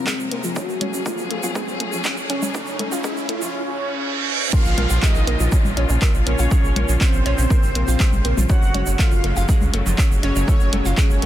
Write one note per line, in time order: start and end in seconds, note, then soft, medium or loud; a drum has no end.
0.00 0.52 C#3 medium
0.00 0.52 F3 medium
0.00 0.52 A#3 medium
0.00 0.58 C4 loud
0.00 0.52 A#4 medium
0.00 riser medium
0.07 0.12 G#3 loud
0.07 kick loud
0.07 clap loud
0.07 shaker medium
0.19 0.27 A#1 medium
0.19 shaker soft
0.31 0.40 A#1 loud
0.31 0.39 A#3 medium
0.31 closed hi-hat loud
0.44 0.52 A#1 medium
0.44 0.47 F3 medium
0.44 shaker medium
0.56 3.51 F#3 medium
0.56 3.51 A3 medium
0.56 0.59 C#4 medium
0.56 3.51 C#4 medium
0.56 1.02 F#4 loud
0.56 3.51 G#4 medium
0.56 kick loud
0.56 shaker medium
0.69 0.77 F#1 medium
0.69 shaker soft
0.81 0.89 F#1 loud
0.81 0.89 C#4 loud
0.81 closed hi-hat loud
0.81 low conga medium
0.93 1.02 F#1 medium
0.93 0.99 C#4 medium
0.93 shaker medium
1.06 1.09 A3 medium
1.06 1.51 F4 medium
1.06 kick loud
1.06 shaker medium
1.18 1.26 F#1 medium
1.18 shaker soft
1.31 1.39 F#1 loud
1.31 1.34 A3 medium
1.31 closed hi-hat loud
1.43 1.51 F#1 medium
1.43 1.48 F4 loud
1.43 shaker medium
1.55 1.61 G#3 loud
1.55 kick loud
1.55 shaker medium
1.68 1.76 F#1 medium
1.68 shaker soft
1.80 1.94 F#1 loud
1.80 1.88 A3 medium
1.80 closed hi-hat loud
1.92 2.01 C#2 medium
1.92 1.96 F3 medium
1.92 shaker medium
2.04 2.08 C#4 medium
2.04 kick loud
2.04 clap loud
2.04 shaker medium
2.17 2.26 F#1 medium
2.17 shaker soft
2.30 2.38 F#1 loud
2.30 2.94 C#4 loud
2.30 2.38 C#4 loud
2.30 closed hi-hat loud
2.42 2.50 F#1 loud
2.42 2.48 C#4 medium
2.42 low conga medium
2.42 shaker medium
2.54 2.58 A3 medium
2.54 kick loud
2.54 shaker medium
2.66 2.75 F#1 medium
2.66 shaker soft
2.79 2.88 F#1 loud
2.79 2.83 A3 medium
2.79 closed hi-hat loud
2.79 low conga medium
2.92 3.00 F#1 medium
2.92 2.97 F4 loud
2.92 shaker medium
3.04 3.09 G#3 loud
3.04 4.43 C#4 loud
3.04 kick loud
3.04 shaker medium
3.17 shaker soft
3.29 3.37 F#1 loud
3.29 3.37 A3 medium
3.29 closed hi-hat medium
3.42 3.50 F#1 medium
3.42 3.45 F3 medium
3.42 shaker medium
3.54 reverse cymbal medium
4.53 11.26 C#3 medium
4.53 8.46 F3 medium
4.53 4.56 A#3 medium
4.53 8.46 A#3 medium
4.53 5.04 F4 loud
4.53 8.46 F4 medium
4.53 5.03 F5 loud
4.53 kick loud
4.53 crash loud
4.53 downlifter medium
4.53 shaker medium
4.65 4.74 A#1 medium
4.65 shaker soft
4.78 4.86 A#1 loud
4.78 4.81 A#3 medium
4.78 closed hi-hat loud
4.78 low conga medium
4.90 4.98 A#1 medium
4.90 4.95 F4 loud
4.90 shaker medium
5.02 5.08 G#3 loud
5.02 5.48 D#4 medium
5.02 5.48 D#5 medium
5.02 kick loud
5.02 clap loud
5.02 shaker medium
5.15 5.23 A#1 medium
5.15 shaker soft
5.27 5.36 A#1 loud
5.27 5.35 A#3 medium
5.27 closed hi-hat medium
5.40 5.48 A#1 medium
5.40 5.43 F3 medium
5.40 shaker medium
5.52 5.55 C#4 medium
5.52 kick loud
5.52 shaker medium
5.65 5.73 G#1 medium
5.65 low conga medium
5.65 shaker soft
5.77 5.85 A#1 loud
5.77 5.85 C#4 loud
5.77 closed hi-hat loud
5.89 5.97 A#1 medium
5.89 5.95 C#4 medium
5.89 shaker medium
6.02 6.05 A#3 medium
6.02 kick loud
6.02 clap loud
6.02 shaker medium
6.14 6.22 A#1 medium
6.14 shaker soft
6.26 6.35 A#1 loud
6.26 6.30 A#3 medium
6.26 6.91 C#4 loud
6.26 6.91 C#5 loud
6.26 closed hi-hat loud
6.39 6.47 A#1 medium
6.39 6.44 F4 loud
6.39 shaker medium
6.51 6.57 G#3 loud
6.51 kick loud
6.51 shaker medium
6.64 6.72 A#1 medium
6.64 shaker soft
6.76 6.84 A#1 loud
6.76 6.84 A#3 medium
6.76 closed hi-hat loud
6.76 low conga medium
6.89 6.97 A#1 medium
6.89 6.92 F3 medium
6.89 shaker medium
7.01 8.40 C4 loud
7.01 7.04 C#4 medium
7.01 8.40 C5 loud
7.01 kick loud
7.01 clap loud
7.01 shaker medium
7.13 7.21 A#1 medium
7.13 shaker soft
7.26 7.34 A#1 loud
7.26 7.34 C#4 loud
7.26 closed hi-hat medium
7.38 7.46 A#1 medium
7.38 7.43 C#4 medium
7.38 shaker medium
7.50 7.54 A#3 medium
7.50 kick loud
7.50 shaker medium
7.63 7.71 G#1 medium
7.63 shaker soft
7.75 7.83 A#1 loud
7.75 7.79 A#3 medium
7.75 closed hi-hat loud
7.88 7.96 A#1 medium
7.88 7.93 F4 loud
7.88 shaker medium
8.00 8.05 G#3 loud
8.00 kick loud
8.00 clap loud
8.00 shaker medium
8.13 8.21 A#1 medium
8.13 low conga medium
8.13 shaker soft
8.25 8.33 A#1 loud
8.25 8.33 A#3 medium
8.25 closed hi-hat medium
8.37 8.45 A#1 medium
8.37 8.40 F3 medium
8.37 low conga medium
8.37 shaker medium
8.49 11.26 F#3 medium
8.49 11.26 G#3 medium
8.49 11.26 A3 medium
8.49 8.53 C#4 medium
8.49 8.95 F#4 loud
8.49 8.95 F#5 loud
8.49 kick loud
8.49 shaker medium
8.62 8.70 F#1 medium
8.62 shaker soft
8.74 8.83 F#1 loud
8.74 8.82 C#4 loud
8.74 closed hi-hat loud
8.74 low conga medium
8.86 8.95 F#1 medium
8.86 8.92 C#4 medium
8.86 shaker medium
8.99 9.02 A3 medium
8.99 9.45 F4 loud
8.99 9.45 F5 medium
8.99 kick loud
8.99 clap loud
8.99 shaker medium
9.12 9.20 F#1 medium
9.12 shaker soft
9.24 9.32 F#1 loud
9.24 9.27 A3 medium
9.24 closed hi-hat loud
9.37 9.45 F#1 loud
9.37 9.42 F4 loud
9.37 shaker medium
9.49 9.54 G#3 loud
9.49 kick loud
9.49 shaker medium
9.61 9.69 C#2 medium
9.61 low conga medium
9.61 shaker soft
9.74 9.82 F#1 medium
9.74 9.82 A3 medium
9.74 closed hi-hat loud
9.86 9.94 F#1 medium
9.86 9.89 F3 medium
9.86 shaker medium
9.98 10.02 C#4 medium
9.98 kick loud
9.98 clap loud
9.98 shaker medium
10.11 10.19 F#1 medium
10.11 shaker soft
10.23 10.31 F#1 loud
10.23 10.31 C#4 loud
10.23 10.88 C#4 loud
10.23 10.88 C#5 loud
10.23 closed hi-hat loud
10.36 10.44 F#1 loud
10.36 10.41 C#4 medium
10.36 shaker medium
10.48 10.51 A3 medium
10.48 kick loud
10.48 shaker medium
10.60 10.69 F#1 medium
10.60 shaker soft
10.73 10.81 F#1 loud
10.73 10.76 A3 medium
10.73 closed hi-hat loud
10.73 low conga medium
10.85 10.93 F#1 medium
10.85 10.91 F4 loud
10.85 shaker medium
10.97 11.03 G#3 loud
10.97 11.26 C#4 loud
10.97 11.26 C#5 loud
10.97 kick loud
10.97 clap loud
10.97 shaker medium
11.10 11.18 F#1 medium
11.10 shaker soft
11.22 11.26 F#1 loud
11.22 11.26 A3 medium
11.22 closed hi-hat loud